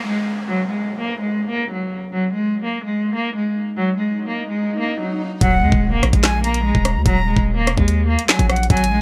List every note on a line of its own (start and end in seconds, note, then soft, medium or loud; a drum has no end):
0.00 downlifter medium
0.07 0.26 G#3 medium
0.48 0.67 F#3 loud
0.69 0.98 G#3 medium
0.99 1.18 A#3 medium
1.20 1.49 G#3 medium
1.51 1.70 A#3 medium
1.71 1.90 F#3 medium
2.13 2.31 F#3 medium
2.13 swell medium
2.33 2.62 G#3 medium
2.64 2.83 A#3 medium
2.84 3.13 G#3 medium
3.15 3.34 A#3 medium
3.36 3.55 G#3 medium
3.77 3.96 F#3 loud
3.97 4.26 G#3 medium
4.28 4.47 A#3 medium
4.49 4.78 G#3 medium
4.80 4.98 A#3 medium
5.00 5.19 F#3 medium
5.41 5.63 D#1 loud
5.41 5.60 F#3 loud
5.41 5.80 F#5 loud
5.41 kick loud
5.41 closed hi-hat medium
5.41 impact medium
5.62 5.72 F#2 loud
5.62 5.91 G#3 medium
5.72 6.02 D#1 loud
5.72 kick loud
5.93 6.11 A#3 medium
6.03 6.13 A#1 loud
6.03 cross-stick loud
6.03 closed hi-hat medium
6.13 6.72 A#1 loud
6.13 6.42 G#3 medium
6.13 kick loud
6.13 closed hi-hat medium
6.24 6.43 G#5 loud
6.24 snare loud
6.24 clap medium
6.24 closed hi-hat medium
6.44 6.63 A#3 medium
6.44 7.02 A#5 medium
6.44 closed hi-hat medium
6.54 closed hi-hat medium
6.65 6.83 G#3 medium
6.75 6.97 D#1 loud
6.75 kick medium
6.85 cross-stick loud
6.85 closed hi-hat medium
6.95 7.05 D#2 loud
7.06 7.35 D#1 loud
7.06 7.24 F#3 loud
7.06 7.44 A#5 loud
7.06 kick loud
7.06 closed hi-hat medium
7.26 7.55 G#3 medium
7.37 7.69 D#1 loud
7.37 kick loud
7.57 7.76 A#3 medium
7.67 7.77 E1 loud
7.67 cross-stick loud
7.67 closed hi-hat medium
7.78 8.17 D#2 loud
7.78 8.07 G#3 medium
7.78 kick loud
7.88 closed hi-hat medium
8.08 8.27 A#3 medium
8.19 closed hi-hat medium
8.29 8.48 F#3 medium
8.29 8.48 G#5 medium
8.29 snare loud
8.29 clap loud
8.39 8.69 A#1 loud
8.39 kick medium
8.39 closed hi-hat medium
8.50 8.69 F#5 medium
8.50 cross-stick loud
8.50 closed hi-hat soft
8.56 closed hi-hat medium
8.63 closed hi-hat medium
8.70 8.92 G#1 loud
8.70 8.89 F#3 loud
8.70 9.02 G#5 loud
8.70 kick loud
8.70 closed hi-hat medium
8.77 closed hi-hat medium
8.84 closed hi-hat medium
8.91 9.00 A#1 loud
8.91 9.02 G#3 medium